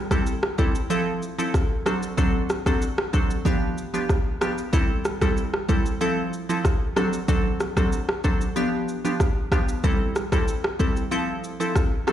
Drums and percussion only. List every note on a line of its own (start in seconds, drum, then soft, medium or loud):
0.11 kick medium
0.11 cross-stick medium
0.11 shaker medium
0.26 shaker medium
0.43 cross-stick medium
0.58 kick medium
0.58 shaker medium
0.75 shaker medium
0.90 shaker medium
1.22 shaker medium
1.39 shaker medium
1.54 kick loud
1.54 cross-stick medium
1.54 shaker medium
1.86 cross-stick loud
1.86 shaker medium
2.03 shaker medium
2.18 kick loud
2.18 shaker medium
2.50 cross-stick medium
2.50 shaker medium
2.66 kick medium
2.66 cross-stick medium
2.66 shaker medium
2.82 shaker medium
2.98 cross-stick loud
3.13 kick medium
3.13 shaker medium
3.30 shaker medium
3.45 kick medium
3.45 shaker medium
3.78 shaker medium
3.94 shaker medium
4.09 kick medium
4.09 cross-stick medium
4.09 shaker medium
4.41 cross-stick loud
4.41 shaker soft
4.58 shaker medium
4.73 kick loud
4.73 shaker medium
5.05 cross-stick medium
5.05 shaker medium
5.21 kick medium
5.21 cross-stick medium
5.21 shaker medium
5.37 shaker medium
5.54 cross-stick medium
5.69 kick medium
5.69 shaker medium
5.86 shaker medium
6.01 shaker medium
6.33 shaker soft
6.50 shaker medium
6.65 kick medium
6.65 cross-stick medium
6.65 shaker medium
6.97 cross-stick loud
6.97 shaker soft
7.13 shaker medium
7.28 kick loud
7.28 shaker medium
7.60 cross-stick medium
7.60 shaker medium
7.77 kick medium
7.77 cross-stick medium
7.77 shaker medium
7.92 shaker medium
8.09 cross-stick loud
8.24 kick medium
8.24 shaker medium
8.41 shaker medium
8.56 shaker medium
8.88 shaker medium
9.05 shaker medium
9.20 kick medium
9.20 cross-stick medium
9.20 shaker medium
9.52 kick medium
9.52 cross-stick loud
9.52 shaker soft
9.69 shaker medium
9.84 kick loud
9.84 shaker medium
10.16 cross-stick medium
10.16 shaker medium
10.32 kick medium
10.32 cross-stick medium
10.32 shaker medium
10.48 shaker medium
10.64 cross-stick loud
10.80 kick medium
10.80 shaker medium
10.96 shaker medium
11.12 shaker medium
11.44 shaker medium
11.61 shaker medium
11.76 kick loud
11.76 cross-stick medium
11.76 shaker medium
12.08 cross-stick loud
12.08 shaker soft